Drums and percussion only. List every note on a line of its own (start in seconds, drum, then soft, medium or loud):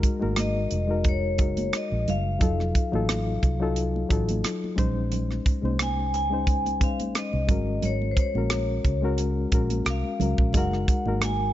0.03 kick medium
0.03 closed hi-hat medium
0.22 high conga medium
0.36 cross-stick loud
0.36 closed hi-hat medium
0.36 muted conga soft
0.36 high conga medium
0.57 muted conga soft
0.71 closed hi-hat medium
1.04 kick medium
1.04 closed hi-hat medium
1.04 muted conga soft
1.38 kick medium
1.38 closed hi-hat medium
1.57 closed hi-hat medium
1.57 high conga medium
1.73 cross-stick loud
1.73 closed hi-hat medium
1.73 muted conga soft
1.92 muted conga soft
2.08 closed hi-hat medium
2.08 low conga medium
2.41 kick loud
2.41 closed hi-hat medium
2.41 low conga medium
2.60 cross-stick soft
2.60 muted conga soft
2.75 kick medium
2.75 closed hi-hat medium
2.93 high conga medium
3.09 cross-stick loud
3.09 closed hi-hat medium
3.09 muted conga soft
3.09 high conga medium
3.29 muted conga soft
3.43 kick medium
3.43 closed hi-hat medium
3.76 closed hi-hat medium
3.96 muted conga soft
4.10 kick medium
4.10 closed hi-hat medium
4.29 closed hi-hat medium
4.29 high conga medium
4.44 cross-stick medium
4.44 closed hi-hat medium
4.44 muted conga soft
4.64 muted conga soft
4.78 kick medium
4.78 closed hi-hat medium
4.78 low conga medium
5.12 closed hi-hat medium
5.12 muted conga soft
5.12 low conga medium
5.31 cross-stick soft
5.31 muted conga soft
5.46 kick medium
5.46 closed hi-hat medium
5.65 high conga medium
5.79 cross-stick loud
5.79 closed hi-hat medium
5.79 high conga medium
5.99 muted conga soft
6.14 closed hi-hat medium
6.47 kick medium
6.47 closed hi-hat medium
6.47 muted conga soft
6.66 closed hi-hat soft
6.66 muted conga soft
6.81 kick medium
6.81 closed hi-hat medium
7.00 closed hi-hat medium
7.00 high conga medium
7.15 cross-stick medium
7.15 closed hi-hat medium
7.15 muted conga soft
7.33 muted conga soft
7.49 kick medium
7.49 closed hi-hat medium
7.49 low conga medium
7.82 closed hi-hat medium
7.82 muted conga soft
7.82 low conga medium
8.02 muted conga soft
8.17 kick medium
8.17 closed hi-hat medium
8.35 high conga medium
8.50 cross-stick loud
8.50 closed hi-hat medium
8.50 muted conga soft
8.50 high conga medium
8.85 kick medium
8.85 closed hi-hat medium
9.18 closed hi-hat medium
9.18 muted conga soft
9.52 kick medium
9.52 closed hi-hat medium
9.70 closed hi-hat medium
9.70 high conga medium
9.85 cross-stick medium
9.85 closed hi-hat medium
9.85 muted conga soft
10.04 muted conga soft
10.20 closed hi-hat medium
10.20 low conga medium
10.38 kick medium
10.53 kick loud
10.53 closed hi-hat medium
10.53 muted conga soft
10.53 low conga medium
10.71 cross-stick soft
10.71 muted conga soft
10.88 kick medium
10.88 closed hi-hat medium
11.05 high conga medium
11.21 cross-stick loud
11.21 closed hi-hat medium
11.21 high conga medium
11.40 muted conga soft